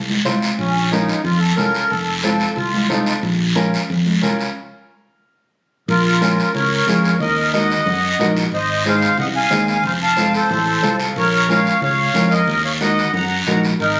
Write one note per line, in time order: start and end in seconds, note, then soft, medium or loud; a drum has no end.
0.00 0.19 C2 medium
0.09 high conga medium
0.25 0.39 C2 medium
0.25 0.49 C4 medium
0.25 0.49 F4 medium
0.25 0.49 C5 medium
0.25 high conga medium
0.25 short guiro medium
0.42 short guiro medium
0.59 1.12 A#1 medium
0.59 0.90 C#4 medium
0.59 long guiro medium
0.91 1.15 C#4 medium
0.91 1.22 D#4 medium
0.91 1.15 F4 medium
0.91 1.16 A#4 medium
0.91 high conga medium
0.91 short guiro medium
1.09 short guiro medium
1.24 1.51 F2 medium
1.24 1.40 F4 medium
1.24 long guiro medium
1.39 1.56 A4 medium
1.56 1.71 C2 medium
1.56 1.81 C#4 medium
1.56 1.81 F4 medium
1.56 1.81 A4 medium
1.56 1.91 A#4 medium
1.56 high conga medium
1.56 short guiro medium
1.75 short guiro medium
1.89 2.44 F1 medium
1.89 2.21 A4 medium
1.89 long guiro medium
2.22 2.47 C4 medium
2.22 2.48 F4 medium
2.22 2.57 A4 medium
2.22 2.48 A4 medium
2.22 high conga medium
2.22 short guiro medium
2.40 short guiro medium
2.55 2.84 C2 medium
2.55 2.87 F4 medium
2.55 long guiro medium
2.73 high conga medium
2.89 3.03 C2 medium
2.89 3.13 C4 medium
2.89 3.13 D#4 medium
2.89 3.14 F4 medium
2.89 3.13 A4 medium
2.89 high conga medium
2.89 short guiro medium
3.06 short guiro medium
3.23 3.76 A#1 medium
3.23 long guiro medium
3.55 3.79 C#4 medium
3.55 3.79 F4 medium
3.55 3.79 A#4 medium
3.55 high conga medium
3.55 short guiro medium
3.74 short guiro medium
3.90 4.16 F2 medium
3.90 long guiro medium
4.06 high conga medium
4.22 4.36 C2 medium
4.22 4.45 C#4 medium
4.22 4.46 F4 medium
4.22 4.46 A#4 medium
4.22 high conga medium
4.22 short guiro medium
4.39 short guiro medium
5.88 6.41 A#1 loud
5.88 6.51 F4 medium
5.88 6.53 A#4 medium
5.88 high conga soft
5.88 long guiro medium
6.21 6.44 C#4 medium
6.21 6.44 F4 medium
6.21 6.44 A#4 medium
6.21 high conga medium
6.21 short guiro medium
6.39 short guiro medium
6.54 6.81 C#2 medium
6.54 7.17 A#4 medium
6.54 7.16 C#5 medium
6.54 high conga soft
6.54 low conga medium
6.54 long guiro medium
6.87 7.13 F2 medium
6.87 7.10 C#4 medium
6.87 7.10 F4 medium
6.87 7.11 G#4 medium
6.87 high conga medium
6.87 short guiro medium
7.05 short guiro medium
7.20 7.73 D#2 loud
7.20 7.51 A#4 medium
7.20 7.51 D#5 loud
7.20 high conga soft
7.20 low conga medium
7.20 long guiro medium
7.53 7.76 D#4 medium
7.53 7.76 F#4 medium
7.53 7.77 A#4 medium
7.53 8.32 D#5 medium
7.53 8.32 F#5 medium
7.53 high conga medium
7.53 short guiro medium
7.70 short guiro medium
7.86 8.13 F#2 loud
7.86 high conga soft
7.86 low conga medium
7.86 long guiro medium
8.19 8.46 A#1 medium
8.19 8.43 D#4 medium
8.19 8.43 F#4 medium
8.19 8.43 A#4 medium
8.19 high conga medium
8.19 low conga medium
8.19 short guiro medium
8.36 short guiro medium
8.52 9.05 G#1 medium
8.52 8.84 C5 medium
8.52 8.84 D#5 loud
8.52 high conga soft
8.52 long guiro medium
8.85 9.08 C4 medium
8.85 9.09 D#4 medium
8.85 9.09 G#4 medium
8.85 9.17 C5 medium
8.85 9.17 F5 medium
8.85 high conga medium
8.85 short guiro medium
9.02 short guiro medium
9.18 9.45 C2 loud
9.18 9.27 D#5 medium
9.18 9.27 F#5 medium
9.18 high conga soft
9.18 low conga medium
9.18 long guiro medium
9.36 9.66 F5 medium
9.36 9.67 G#5 loud
9.50 9.77 D#2 medium
9.50 9.74 C4 medium
9.50 9.74 D#4 medium
9.50 9.75 G#4 medium
9.50 high conga medium
9.50 short guiro medium
9.67 9.84 F5 medium
9.67 9.84 G#5 medium
9.67 short guiro medium
9.84 10.37 F1 medium
9.84 9.92 C5 medium
9.84 9.92 F5 loud
9.84 high conga soft
9.84 low conga medium
9.84 long guiro medium
10.03 10.33 F5 medium
10.03 10.32 A5 loud
10.17 10.40 C4 medium
10.17 10.40 F4 medium
10.17 10.41 A4 medium
10.17 high conga medium
10.17 short guiro medium
10.33 10.96 A4 medium
10.33 10.96 C5 loud
10.33 short guiro medium
10.50 10.77 A1 loud
10.50 high conga soft
10.50 low conga medium
10.50 long guiro medium
10.83 11.10 C2 medium
10.83 11.06 C4 medium
10.83 11.06 F4 medium
10.83 11.06 A4 medium
10.83 10.98 A5 medium
10.83 high conga medium
10.83 short guiro medium
10.99 11.15 F5 medium
10.99 short guiro medium
11.16 11.69 A#1 medium
11.16 11.48 A#4 medium
11.16 11.50 C#5 loud
11.16 high conga soft
11.16 long guiro medium
11.48 11.72 C#4 medium
11.48 11.72 F4 medium
11.48 11.72 A#4 medium
11.48 11.81 C#5 medium
11.48 11.81 F5 loud
11.48 high conga medium
11.48 short guiro medium
11.66 short guiro medium
11.81 12.08 C#2 loud
11.81 12.29 C#5 medium
11.81 12.34 F5 loud
11.81 high conga soft
11.81 low conga medium
11.81 long guiro medium
12.14 12.41 F2 medium
12.14 12.38 C#4 medium
12.14 12.38 F4 medium
12.14 12.38 A#4 medium
12.14 high conga medium
12.14 short guiro medium
12.31 12.62 A#4 medium
12.31 12.62 D#5 loud
12.31 short guiro medium
12.47 13.00 D#2 medium
12.47 high conga soft
12.47 low conga medium
12.47 long guiro medium
12.65 12.72 C#5 medium
12.65 12.72 F5 medium
12.81 13.04 D#4 medium
12.81 13.04 F#4 medium
12.81 13.04 A#4 medium
12.81 13.12 D#5 medium
12.81 13.11 F#5 loud
12.81 high conga medium
12.81 short guiro medium
12.98 short guiro medium
13.13 13.40 F#2 loud
13.13 13.60 F#5 medium
13.13 13.60 A#5 loud
13.13 high conga soft
13.13 low conga medium
13.13 long guiro medium
13.46 13.73 A#1 medium
13.46 13.70 D#4 medium
13.46 13.70 F#4 medium
13.46 13.70 A#4 medium
13.46 high conga medium
13.46 low conga medium
13.46 short guiro medium
13.63 short guiro medium
13.80 14.00 G#1 medium
13.80 14.00 D#4 medium
13.80 14.00 A#4 loud
13.80 high conga soft
13.80 long guiro medium